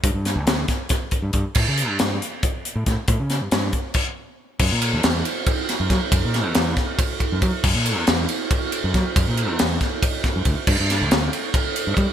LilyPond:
<<
  \new Staff \with { instrumentName = "Fingered electric bass" } { \clef bass \time 7/8 \key fis \phrygian \tempo 4 = 138 g,16 g,8 d,16 d,8 r4 r16 g,16 g,16 r16 | a,16 cis8 g,16 g,8 r4 r16 a,16 a,16 r16 | a,16 cis8 g,16 g,8 r2 | fis,16 ais,8 e,16 e,8 r4 r16 fis,16 fis16 r16 |
fis,16 ais,8 e,16 e,8 r4 r16 fis,16 fis16 r16 | fis,16 ais,8 e,16 e,8 r4 r16 fis,16 fis16 r16 | fis,16 ais,8 e,16 e,8 r4 r16 fis,16 d,16 r16 | g,16 g,8 d,16 d,8 r4 r16 g,16 g16 r16 | }
  \new DrumStaff \with { instrumentName = "Drums" } \drummode { \time 7/8 <hh bd>8 <hh sn>8 <hh sn>8 <hh bd sn>8 <hh bd sn>8 <hh bd>8 <hh bd>8 | <cymc bd>8 hh8 <hh sn>8 hh8 <hh bd>8 hh8 <hh bd sn>8 | <hh bd>8 <hh sn>8 <hh sn>8 <hh bd>8 <cymc bd>4. | <cymc bd>8 cymr8 <cymr sn>8 cymr8 <bd cymr>8 <cymr sn>8 <bd cymr sn>8 |
<bd cymr>8 <cymr sn>8 <cymr sn>8 <bd cymr sn>8 <bd cymr>8 <bd cymr>8 <bd cymr>8 | <cymc bd>8 cymr8 <cymr sn>8 cymr8 <bd cymr>8 cymr8 <bd cymr sn>8 | <bd cymr>8 cymr8 <cymr sn>8 <bd cymr sn>8 <bd cymr>8 <bd cymr sn>8 <bd cymr>8 | <cymc bd>8 <cymr sn>8 <cymr sn>8 cymr8 <bd cymr>8 cymr8 <bd cymr>8 | }
>>